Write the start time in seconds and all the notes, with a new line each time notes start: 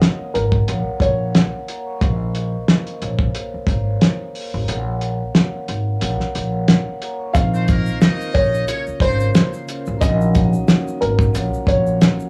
Already playing: A#3 A#4 C#5 D#5 F5 F#5
0.02 snare, closed hi-hat
0.34 G#1 A#4, closed hi-hat
0.52 kick
0.66 A#1 A#3 A#4 C#5 F5, closed hi-hat
0.71 F#5
0.87 muted upright bass stroke
0.98 A#1 A#3 A#4 C#5 F5, kick, closed hi-hat
1.03 F#5
1.34 F5, snare, closed hi-hat
1.52 A#4 F#5
1.68 C#5 A#5, closed hi-hat
1.86 F5 C#6
1.99 A#1 A#3 A#4 C5 D#5, kick, closed hi-hat
2.04 F5
2.35 closed hi-hat
2.68 snare, closed hi-hat
2.87 closed hi-hat
2.99 A#1 A#3 A#4 C5 C#5, closed hi-hat
3.04 F5
3.19 kick
3.35 closed hi-hat
3.54 muted upright bass stroke
3.67 G#1 A#3 A#4 C5 C#5, kick, closed hi-hat
3.72 F5
4.01 snare, closed hi-hat
4.35 open hi-hat
4.54 A1
4.64 A#3 A#4 C#5 F5, closed hi-hat
4.69 A#1 F#5
5.01 closed hi-hat
5.35 snare, closed hi-hat
5.68 G#1, closed hi-hat
5.99 A#1 A#3 A#4 C#5 F5, closed hi-hat
6.04 F#5
6.20 muted upright bass stroke, snare
6.31 A#1 A#3 A#4 C#5 F5, closed hi-hat
6.36 F#5
6.68 snare, closed hi-hat
6.86 A#4 F#5
7.01 C#5 A#5, closed hi-hat
7.20 F5 C#6
7.32 A#1 D#3 A#3 C4 F4 A#4 D#5 F5, kick, closed hi-hat, shaker
7.37 F5
7.54 C4 C5, shaker
7.68 A#3 A#4, kick, closed hi-hat, shaker
7.86 shaker
8.01 D#4 D#5, snare, closed hi-hat, shaker
8.21 shaker
8.33 A#1 C#3 A#3 A#4 C#5, kick, closed hi-hat
8.37 F5
8.54 shaker
8.68 C#4 C#5, closed hi-hat, shaker
8.87 muted upright bass stroke, shaker
9.00 G#1 A#3 C4 C#4 A#4 C5, kick, closed hi-hat
9.05 F5
9.20 shaker
9.34 snare, closed hi-hat, shaker
9.53 shaker
9.68 closed hi-hat, shaker
9.86 A1, shaker
9.98 D#3 F#3 A#3 C#4 A#4 C#5 D#5, kick, closed hi-hat, shaker
10.02 A#1 F#5
10.21 shaker
10.35 kick, closed hi-hat, shaker
10.53 shaker
10.68 snare, closed hi-hat, shaker
10.88 shaker
11.01 G#1 A#4, closed hi-hat
11.19 kick, shaker
11.33 A#1 F3 A#3 A#4 C#5 F5, closed hi-hat, shaker
11.38 F#5
11.54 muted upright bass stroke, shaker
11.65 A#1 A#3 A#4 C#5 F5, kick, closed hi-hat
11.70 F#5
11.87 shaker
12.01 F5, snare, closed hi-hat, shaker
12.19 A#4 F#5, shaker